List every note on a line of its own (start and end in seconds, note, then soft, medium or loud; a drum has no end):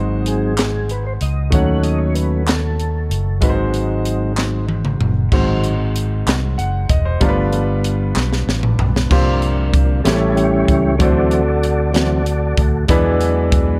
0.00 1.17 G#1 medium
0.00 0.53 G#2 medium
0.00 0.54 F#3 medium
0.00 1.47 G#3 medium
0.00 0.54 C4 soft
0.00 0.55 D#4 medium
0.00 1.48 D#4 medium
0.00 1.48 F#4 medium
0.00 1.52 C5 medium
0.26 0.92 G#4 loud
0.26 closed hi-hat medium
0.57 snare loud
0.57 clap medium
0.57 closed hi-hat medium
0.89 1.05 B4 medium
0.89 closed hi-hat soft
1.06 1.13 C5 medium
1.21 1.50 C#2 medium
1.21 1.54 D#5 medium
1.21 closed hi-hat medium
1.50 3.07 D#2 loud
1.50 2.43 D#3 medium
1.50 2.43 F#3 soft
1.50 3.37 A3 medium
1.50 2.44 A3 soft
1.50 2.44 C#4 medium
1.50 3.38 D#4 medium
1.50 3.38 F#4 medium
1.50 3.39 C#5 medium
1.50 1.82 F#5 medium
1.50 kick loud
1.50 closed hi-hat medium
1.83 2.00 D#5 medium
1.83 closed hi-hat soft
1.98 2.16 C#5 medium
2.15 2.48 B4 medium
2.15 closed hi-hat medium
2.47 3.38 A4 medium
2.47 snare loud
2.47 clap medium
2.47 closed hi-hat medium
2.80 closed hi-hat soft
3.10 3.42 F#1 medium
3.10 closed hi-hat medium
3.40 4.96 G#1 loud
3.40 4.33 G#2 medium
3.40 4.32 F#3 medium
3.40 5.27 G#3 medium
3.40 4.33 C4 medium
3.40 5.28 D#4 medium
3.40 4.33 D#4 medium
3.40 5.28 F#4 medium
3.40 3.49 B4 medium
3.40 kick loud
3.40 closed hi-hat medium
3.49 5.32 C5 medium
3.74 closed hi-hat soft
4.05 closed hi-hat medium
4.37 4.65 F#3 soft
4.37 4.66 C4 soft
4.37 4.66 D#4 soft
4.37 snare medium
4.37 clap medium
4.69 high tom medium
4.85 mid tom medium
5.00 5.29 F#1 medium
5.00 mid tom loud
5.32 6.23 G#1 loud
5.32 6.23 G#2 medium
5.32 5.74 D#3 soft
5.32 5.74 F#3 soft
5.32 7.17 G#3 medium
5.32 7.18 C4 medium
5.32 5.75 C4 medium
5.32 7.18 D#4 medium
5.32 7.18 F#4 medium
5.32 6.56 C5 medium
5.32 kick medium
5.32 crash medium
5.64 closed hi-hat medium
5.96 closed hi-hat medium
6.26 6.55 C2 medium
6.26 snare loud
6.26 clap medium
6.26 closed hi-hat medium
6.57 6.87 F#1 medium
6.57 6.88 F#5 medium
6.57 closed hi-hat soft
6.89 7.19 E1 medium
6.89 7.05 D#5 medium
6.89 kick loud
6.89 closed hi-hat medium
7.05 7.35 C5 medium
7.20 8.12 G1 loud
7.20 8.12 G2 medium
7.20 7.63 F3 medium
7.20 9.06 G3 medium
7.20 7.63 A3 medium
7.20 9.06 B3 medium
7.20 7.64 B3 medium
7.20 9.07 D4 medium
7.20 9.07 F4 medium
7.20 7.28 A#4 medium
7.20 kick loud
7.20 closed hi-hat medium
7.29 9.11 B4 medium
7.53 closed hi-hat soft
7.84 closed hi-hat medium
8.15 8.45 B1 loud
8.15 snare medium
8.15 clap medium
8.33 snare medium
8.47 8.76 A1 medium
8.47 snare medium
8.63 mid tom medium
8.79 9.08 B1 medium
8.79 floor tom loud
8.96 snare medium
9.09 10.01 C2 medium
9.09 10.02 C3 medium
9.09 10.01 F3 medium
9.09 10.01 A#3 medium
9.09 10.05 A#3 medium
9.09 10.05 C4 medium
9.09 10.01 D4 medium
9.09 10.05 F4 medium
9.09 10.04 G4 medium
9.09 10.04 C5 medium
9.09 kick loud
9.09 crash loud
9.42 closed hi-hat soft
9.74 kick loud
9.74 closed hi-hat medium
10.04 10.64 A1 loud
10.04 10.96 A2 medium
10.04 10.95 E3 medium
10.04 10.95 G3 soft
10.04 10.97 A3 medium
10.04 11.00 C#4 medium
10.04 10.96 C#4 medium
10.04 10.34 E4 medium
10.04 11.00 E4 medium
10.04 11.00 G4 medium
10.04 10.34 A4 medium
10.04 10.12 C5 medium
10.04 snare loud
10.04 closed hi-hat medium
10.12 11.03 C#5 medium
10.35 10.95 E4 medium
10.35 10.96 G4 medium
10.35 11.01 C#5 loud
10.35 closed hi-hat soft
10.68 10.97 C#2 medium
10.68 kick medium
10.68 closed hi-hat medium
10.98 12.54 D2 loud
10.98 11.90 D3 medium
10.98 11.41 E3 medium
10.98 11.41 F#3 medium
10.98 12.85 A3 medium
10.98 12.85 C4 medium
10.98 11.42 C4 medium
10.98 12.86 D4 medium
10.98 11.90 F#4 medium
10.98 12.86 F#4 medium
10.98 11.91 A4 medium
10.98 12.86 C5 medium
10.98 11.92 D5 loud
10.98 kick loud
10.98 closed hi-hat medium
11.31 closed hi-hat soft
11.63 closed hi-hat medium
11.93 12.22 E3 soft
11.93 12.22 F#3 soft
11.93 12.23 C4 soft
11.93 12.85 F#4 medium
11.93 12.85 A4 medium
11.93 12.61 D5 medium
11.93 snare loud
11.93 closed hi-hat medium
12.26 closed hi-hat soft
12.57 12.86 D2 loud
12.57 kick loud
12.57 closed hi-hat medium
12.87 13.79 E2 loud
12.87 13.79 E3 medium
12.87 13.79 F#3 medium
12.87 13.79 G#3 medium
12.87 13.79 B3 medium
12.87 13.79 D4 medium
12.87 13.79 E4 medium
12.87 13.79 B4 medium
12.87 kick loud
12.87 closed hi-hat medium
13.21 closed hi-hat medium
13.52 kick loud
13.52 closed hi-hat medium